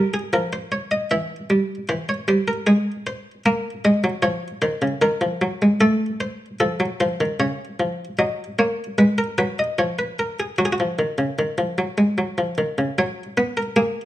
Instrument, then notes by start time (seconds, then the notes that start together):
harpsichord
Already playing: G3 A#4
0.14 G#4
0.33 F3 A#4
0.53 C5
0.72 C#5
0.91 D#5
1.11 E3 E5
1.50 G3
1.89 E3 C5
2.09 C#5
2.28 G3 C5
2.48 A#4
2.67 G#3 G#4
3.07 C5
3.46 A#3 A#4
3.85 G#3 D#5
4.04 F#3
4.22 F3 C#5
4.62 D#3 C5
4.82 C#3
5.02 D#3 A#4
5.21 F3
5.42 F#3
5.62 G#3
5.81 A3 A4
6.21 C5
6.60 F3 A4
6.80 F#3
7.00 F3 C5
7.21 D#3
7.40 C#3 C#5
7.80 F3
8.19 F#3 D#5
8.59 A#3 C#5
8.98 G#3 B4
9.18 A#4
9.38 F#3 B4
9.59 D#5
9.79 F3 C#5
9.99 B4
10.19 A#4
10.40 G#4
10.58 F#3 F#4
10.65 G#4
10.73 F#4
10.80 F3
10.99 D#3
11.18 C#3
11.39 D#3
11.58 F3
11.78 F#3
11.98 G#3
12.18 F#3
12.38 F3
12.58 D#3
12.78 C#3
12.98 F#3 C#5
13.37 B3 B4
13.57 A#4
13.76 A#3 G#4